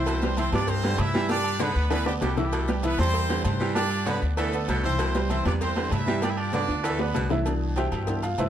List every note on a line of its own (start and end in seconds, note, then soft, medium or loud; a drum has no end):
0.00 0.47 C2 loud
0.00 0.17 E3 loud
0.00 0.35 C4 medium
0.00 0.17 E4 loud
0.00 0.35 E4 medium
0.00 0.35 C5 loud
0.00 0.17 E5 medium
0.06 0.31 B2 medium
0.06 cowbell loud
0.06 low agogo loud
0.06 long guiro medium
0.06 maracas medium
0.22 0.35 G3 medium
0.22 0.35 G4 medium
0.22 0.35 B4 medium
0.22 high conga soft
0.22 maracas medium
0.37 0.50 E3 medium
0.37 0.52 C4 medium
0.37 0.50 E4 medium
0.37 0.52 E4 medium
0.37 0.52 C5 loud
0.37 0.50 E5 medium
0.37 cowbell medium
0.37 high conga medium
0.37 low timbale medium
0.37 low agogo loud
0.37 short guiro medium
0.37 maracas medium
0.52 0.95 G2 loud
0.52 0.69 C3 medium
0.52 0.78 G3 medium
0.52 0.67 D4 loud
0.52 0.68 F4 medium
0.52 0.78 G4 medium
0.52 0.79 B4 medium
0.52 0.67 D5 loud
0.52 cowbell medium
0.52 high conga soft
0.52 low conga loud
0.52 low agogo loud
0.52 short guiro medium
0.52 maracas soft
0.67 0.99 C4 loud
0.67 0.99 E4 medium
0.67 0.99 C5 loud
0.67 cowbell loud
0.67 high conga soft
0.67 low conga medium
0.67 long guiro medium
0.67 maracas medium
0.83 1.00 D3 medium
0.83 1.09 G3 medium
0.83 1.09 G4 medium
0.83 1.09 B4 medium
0.83 cowbell medium
0.83 high conga soft
0.83 low agogo loud
0.98 1.70 G2 medium
0.98 1.30 E4 loud
0.98 1.30 G4 medium
0.98 1.30 E5 loud
0.98 cowbell medium
0.98 high conga medium
0.98 low timbale medium
0.98 low agogo loud
0.98 short guiro medium
0.98 maracas medium
1.14 1.38 E3 medium
1.14 1.27 G3 loud
1.14 1.27 G4 medium
1.14 1.27 G5 medium
1.14 short guiro medium
1.14 maracas soft
1.29 1.55 G3 medium
1.29 1.58 D4 loud
1.29 1.59 F4 medium
1.29 1.55 G4 medium
1.29 1.58 D5 loud
1.29 1.55 G5 medium
1.29 cowbell loud
1.29 high conga soft
1.29 low agogo medium
1.29 long guiro medium
1.29 maracas medium
1.44 high conga soft
1.44 low agogo loud
1.59 1.76 D3 medium
1.59 1.85 B3 medium
1.59 1.90 B3 loud
1.59 1.91 D4 medium
1.59 1.85 B4 medium
1.59 1.90 B4 loud
1.59 1.86 D5 medium
1.59 cowbell medium
1.59 high bongo loud
1.59 high conga loud
1.59 low timbale medium
1.59 short guiro medium
1.59 maracas medium
1.76 2.18 D2 loud
1.76 short guiro medium
1.76 maracas soft
1.90 2.07 E3 medium
1.90 2.03 B3 medium
1.90 2.05 B3 loud
1.90 2.06 D4 medium
1.90 2.03 B4 medium
1.90 2.05 B4 loud
1.90 2.04 D5 medium
1.90 cowbell loud
1.90 low bongo medium
1.90 low agogo loud
1.90 long guiro medium
1.90 maracas medium
2.06 2.13 G3 medium
2.06 2.31 B3 medium
2.06 2.14 B3 medium
2.06 2.13 G4 medium
2.06 2.31 B4 medium
2.06 2.31 D5 medium
2.06 low bongo loud
2.06 high conga soft
2.21 2.93 C2 loud
2.21 2.38 B2 medium
2.21 2.36 G3 medium
2.21 2.36 B3 medium
2.21 2.36 G4 medium
2.21 cowbell medium
2.21 low bongo loud
2.21 high conga loud
2.21 low timbale medium
2.21 low agogo medium
2.21 short guiro medium
2.21 maracas medium
2.37 2.62 E3 medium
2.37 2.81 G3 medium
2.37 2.81 B3 medium
2.37 2.63 E4 medium
2.37 2.81 G4 medium
2.37 2.63 E5 medium
2.37 low bongo loud
2.37 high conga medium
2.37 low agogo medium
2.37 short guiro medium
2.37 maracas soft
2.52 2.76 B2 medium
2.52 cowbell loud
2.52 high conga soft
2.52 low agogo loud
2.52 long guiro medium
2.52 maracas medium
2.68 2.81 G3 medium
2.68 2.81 G4 medium
2.68 2.81 B4 medium
2.68 maracas medium
2.83 2.96 E3 medium
2.83 2.99 B3 medium
2.83 2.96 E4 medium
2.83 2.98 E4 medium
2.83 2.99 B4 loud
2.83 2.96 E5 medium
2.83 cowbell medium
2.83 high conga medium
2.83 low timbale medium
2.83 low agogo loud
2.83 short guiro medium
2.83 maracas medium
2.98 3.42 E2 loud
2.98 3.15 C3 medium
2.98 3.24 G3 medium
2.98 3.42 C4 loud
2.98 3.42 E4 medium
2.98 3.24 G4 medium
2.98 3.42 C5 loud
2.98 3.24 C5 medium
2.98 cowbell medium
2.98 high conga soft
2.98 low conga medium
2.98 low agogo medium
2.98 short guiro medium
2.98 maracas soft
3.14 cowbell loud
3.14 high conga soft
3.14 long guiro medium
3.14 maracas medium
3.29 3.45 D3 medium
3.29 3.55 G3 medium
3.29 3.55 G4 medium
3.29 3.55 B4 medium
3.29 cowbell medium
3.29 high conga soft
3.29 low agogo loud
3.29 maracas medium
3.44 4.16 G2 medium
3.44 3.74 C4 medium
3.44 3.74 E4 medium
3.44 3.74 C5 loud
3.44 cowbell medium
3.44 high conga medium
3.44 low timbale medium
3.44 low agogo loud
3.44 short guiro medium
3.44 maracas medium
3.60 3.84 E3 medium
3.60 3.73 G3 medium
3.60 3.73 G4 medium
3.60 3.73 G5 medium
3.60 high conga medium
3.60 short guiro medium
3.60 maracas soft
3.75 4.01 G3 medium
3.75 4.04 D4 loud
3.75 4.05 F4 medium
3.75 4.01 G4 medium
3.75 4.04 D5 loud
3.75 4.01 G5 loud
3.75 cowbell loud
3.75 high conga soft
3.75 low agogo medium
3.75 long guiro medium
3.75 maracas medium
3.90 high conga soft
3.90 low agogo loud
4.06 4.22 D3 medium
4.06 4.32 B3 medium
4.06 4.22 B3 loud
4.06 4.22 D4 medium
4.06 4.22 B4 loud
4.06 4.32 B4 medium
4.06 4.32 D5 medium
4.06 cowbell medium
4.06 high conga loud
4.06 low timbale medium
4.06 short guiro medium
4.06 maracas medium
4.22 4.65 D2 loud
4.22 short guiro medium
4.22 maracas soft
4.37 4.54 E3 medium
4.37 4.66 A3 medium
4.37 4.50 B3 medium
4.37 4.66 D4 medium
4.37 4.66 A4 loud
4.37 4.50 B4 medium
4.37 4.50 D5 medium
4.37 cowbell loud
4.37 high conga soft
4.37 low agogo loud
4.37 long guiro medium
4.37 maracas medium
4.53 4.78 B3 medium
4.53 4.78 B4 medium
4.53 4.79 D5 medium
4.53 high conga soft
4.53 maracas medium
4.68 5.40 C2 loud
4.68 4.85 B2 medium
4.68 4.83 A3 medium
4.68 4.84 D4 medium
4.68 4.83 A4 medium
4.68 cowbell medium
4.68 high conga loud
4.68 low timbale medium
4.68 low agogo medium
4.68 short guiro medium
4.68 maracas medium
4.83 5.09 E3 loud
4.83 5.27 C4 medium
4.83 5.09 E4 medium
4.83 5.27 E4 medium
4.83 5.27 C5 loud
4.83 5.09 E5 medium
4.83 high conga medium
4.83 low agogo medium
4.83 short guiro medium
4.83 maracas soft
4.99 5.23 B2 medium
4.99 cowbell loud
4.99 high conga soft
4.99 low agogo loud
4.99 long guiro medium
4.99 maracas medium
5.14 5.27 G3 medium
5.14 5.27 G4 medium
5.14 5.28 B4 medium
5.14 high conga soft
5.14 maracas medium
5.30 5.43 E3 medium
5.30 5.45 C4 medium
5.30 5.43 E4 loud
5.30 5.45 E4 medium
5.30 5.45 C5 loud
5.30 5.43 E5 medium
5.30 cowbell medium
5.30 high conga medium
5.30 low timbale medium
5.30 low agogo loud
5.30 short guiro medium
5.30 maracas medium
5.45 5.88 E2 loud
5.45 5.62 C3 medium
5.45 5.71 G3 medium
5.45 5.53 D4 medium
5.45 5.54 F4 medium
5.45 5.71 G4 medium
5.45 5.71 B4 medium
5.45 5.53 D5 medium
5.45 cowbell medium
5.45 high conga soft
5.45 low conga medium
5.45 low agogo medium
5.45 short guiro medium
5.45 maracas soft
5.60 5.90 C4 medium
5.60 5.90 E4 medium
5.60 5.90 C5 loud
5.60 cowbell loud
5.60 high conga soft
5.60 long guiro medium
5.60 maracas medium
5.75 5.92 D3 medium
5.75 6.01 G3 medium
5.75 6.02 G4 medium
5.75 6.02 B4 medium
5.75 cowbell medium
5.75 high conga soft
5.75 low agogo loud
5.91 6.63 G2 medium
5.91 6.22 E4 loud
5.91 6.23 G4 medium
5.91 6.22 E5 loud
5.91 cowbell medium
5.91 high conga loud
5.91 low timbale medium
5.91 low agogo loud
5.91 short guiro medium
5.91 maracas medium
6.07 6.31 E3 medium
6.07 6.20 G3 loud
6.07 6.20 G4 medium
6.07 6.20 G5 loud
6.07 short guiro medium
6.07 maracas soft
6.22 6.48 G3 medium
6.22 6.29 D4 medium
6.22 6.30 F4 medium
6.22 6.48 G4 medium
6.22 6.29 D5 loud
6.22 6.48 G5 medium
6.22 cowbell loud
6.22 high conga soft
6.22 low agogo medium
6.22 long guiro medium
6.22 maracas medium
6.30 6.37 E4 medium
6.30 6.37 E5 medium
6.37 6.53 D4 medium
6.37 6.54 F4 medium
6.37 6.53 D5 medium
6.37 high conga soft
6.37 low agogo loud
6.53 6.69 D3 medium
6.53 6.79 B3 medium
6.53 6.82 D4 loud
6.53 6.83 F4 medium
6.53 6.79 B4 medium
6.53 6.82 D5 loud
6.53 6.79 D5 medium
6.53 cowbell medium
6.53 high conga loud
6.53 low timbale medium
6.53 short guiro medium
6.53 maracas medium
6.68 7.12 D2 loud
6.68 high timbale medium
6.68 short guiro medium
6.68 maracas soft
6.83 7.00 E3 medium
6.83 7.00 A3 medium
6.83 6.97 B3 medium
6.83 6.99 D4 medium
6.83 7.00 A4 loud
6.83 6.97 B4 medium
6.83 6.97 D5 medium
6.83 cowbell loud
6.83 high conga soft
6.83 low agogo loud
6.83 long guiro medium
6.83 maracas medium
6.99 7.28 B3 medium
6.99 7.25 B3 medium
6.99 7.29 D4 medium
6.99 7.28 B4 medium
6.99 7.25 B4 medium
6.99 7.25 D5 medium
6.99 high bongo loud
6.99 low timbale medium
7.14 7.87 C2 medium
7.14 7.31 B2 medium
7.14 cowbell medium
7.14 high bongo loud
7.14 high conga medium
7.14 low timbale medium
7.14 low agogo medium
7.14 short guiro medium
7.14 maracas medium
7.30 7.43 E3 medium
7.30 7.43 E4 medium
7.30 7.43 E5 medium
7.30 low bongo loud
7.30 high conga medium
7.30 low timbale medium
7.30 low agogo medium
7.30 short guiro medium
7.30 maracas soft
7.45 8.49 B2 medium
7.45 8.06 E3 medium
7.45 8.06 D4 medium
7.45 cowbell loud
7.45 high conga soft
7.45 low agogo loud
7.45 long guiro medium
7.45 maracas medium
7.61 high conga soft
7.76 8.20 G4 medium
7.76 8.20 C5 medium
7.76 8.20 E5 medium
7.76 8.20 G5 medium
7.76 cowbell medium
7.76 high conga medium
7.76 low timbale medium
7.76 low agogo loud
7.76 short guiro medium
7.76 maracas medium
7.92 8.35 G2 loud
7.92 cowbell medium
7.92 high conga soft
7.92 low conga medium
7.92 low agogo loud
7.92 short guiro medium
7.92 maracas soft
8.07 8.21 E3 soft
8.07 8.21 B3 soft
8.07 8.22 D4 soft
8.07 cowbell loud
8.07 high conga soft
8.07 low conga medium
8.07 long guiro medium
8.07 maracas medium
8.23 8.38 F4 medium
8.23 8.38 F5 medium
8.23 cowbell medium
8.23 high conga soft
8.23 low agogo loud
8.23 maracas medium
8.38 8.49 G2 medium
8.38 8.49 E4 medium
8.38 8.49 B4 medium
8.38 8.49 C5 medium
8.38 8.49 E5 medium
8.38 cowbell medium
8.38 high conga medium
8.38 low timbale medium
8.38 low agogo medium
8.38 short guiro medium
8.38 maracas medium